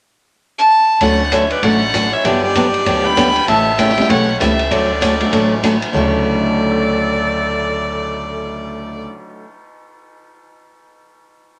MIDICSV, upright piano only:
0, 0, Header, 1, 2, 480
1, 0, Start_track
1, 0, Key_signature, 2, "major"
1, 0, Tempo, 308325
1, 1568, Time_signature, 4, 2, 24, 8
1, 18045, End_track
2, 0, Start_track
2, 0, Title_t, "Upright piano"
2, 0, Program_c, 0, 0
2, 1563, Note_on_c, 0, 57, 60
2, 1570, Note_on_c, 0, 61, 53
2, 1573, Note_on_c, 0, 62, 53
2, 1580, Note_on_c, 0, 66, 54
2, 1585, Note_on_c, 0, 69, 64
2, 1827, Note_off_c, 0, 57, 0
2, 1830, Note_off_c, 0, 61, 0
2, 1832, Note_off_c, 0, 62, 0
2, 1835, Note_off_c, 0, 66, 0
2, 1838, Note_off_c, 0, 69, 0
2, 2527, Note_on_c, 0, 57, 62
2, 2533, Note_on_c, 0, 61, 54
2, 2538, Note_on_c, 0, 62, 58
2, 2541, Note_on_c, 0, 66, 56
2, 2547, Note_on_c, 0, 69, 70
2, 2790, Note_off_c, 0, 57, 0
2, 2793, Note_off_c, 0, 61, 0
2, 2796, Note_off_c, 0, 62, 0
2, 2797, Note_off_c, 0, 66, 0
2, 2800, Note_off_c, 0, 69, 0
2, 4740, Note_on_c, 0, 55, 70
2, 4746, Note_on_c, 0, 59, 61
2, 4751, Note_on_c, 0, 62, 62
2, 4763, Note_on_c, 0, 67, 73
2, 5375, Note_off_c, 0, 55, 0
2, 5378, Note_off_c, 0, 59, 0
2, 5380, Note_off_c, 0, 62, 0
2, 5387, Note_off_c, 0, 67, 0
2, 6182, Note_on_c, 0, 55, 77
2, 6186, Note_on_c, 0, 57, 68
2, 6191, Note_on_c, 0, 61, 66
2, 6198, Note_on_c, 0, 64, 72
2, 6201, Note_on_c, 0, 67, 84
2, 6355, Note_off_c, 0, 55, 0
2, 6356, Note_off_c, 0, 57, 0
2, 6359, Note_off_c, 0, 61, 0
2, 6362, Note_off_c, 0, 64, 0
2, 6364, Note_off_c, 0, 67, 0
2, 6849, Note_on_c, 0, 55, 60
2, 6853, Note_on_c, 0, 57, 57
2, 6857, Note_on_c, 0, 61, 54
2, 6864, Note_on_c, 0, 64, 54
2, 6868, Note_on_c, 0, 67, 72
2, 7111, Note_off_c, 0, 55, 0
2, 7114, Note_off_c, 0, 57, 0
2, 7115, Note_off_c, 0, 61, 0
2, 7119, Note_off_c, 0, 64, 0
2, 7121, Note_off_c, 0, 67, 0
2, 8099, Note_on_c, 0, 54, 69
2, 8103, Note_on_c, 0, 57, 66
2, 8116, Note_on_c, 0, 62, 64
2, 8120, Note_on_c, 0, 66, 76
2, 8730, Note_off_c, 0, 54, 0
2, 8732, Note_off_c, 0, 57, 0
2, 8738, Note_off_c, 0, 62, 0
2, 8741, Note_off_c, 0, 66, 0
2, 9221, Note_on_c, 0, 38, 65
2, 9234, Note_on_c, 0, 50, 58
2, 9245, Note_on_c, 0, 49, 57
2, 9257, Note_on_c, 0, 64, 60
2, 9268, Note_on_c, 0, 66, 71
2, 9725, Note_on_c, 0, 69, 45
2, 9839, Note_on_c, 0, 73, 45
2, 9965, Note_on_c, 0, 76, 42
2, 10110, Note_on_c, 0, 81, 40
2, 10265, Note_on_c, 0, 85, 39
2, 10430, Note_on_c, 0, 88, 37
2, 10613, Note_on_c, 0, 93, 36
2, 14102, Note_off_c, 0, 38, 0
2, 14116, Note_off_c, 0, 50, 0
2, 14126, Note_off_c, 0, 49, 0
2, 14139, Note_off_c, 0, 64, 0
2, 14150, Note_off_c, 0, 66, 0
2, 14544, Note_off_c, 0, 69, 0
2, 14659, Note_off_c, 0, 73, 0
2, 14784, Note_off_c, 0, 76, 0
2, 14929, Note_off_c, 0, 81, 0
2, 15085, Note_off_c, 0, 85, 0
2, 15250, Note_off_c, 0, 88, 0
2, 15432, Note_off_c, 0, 93, 0
2, 18045, End_track
0, 0, End_of_file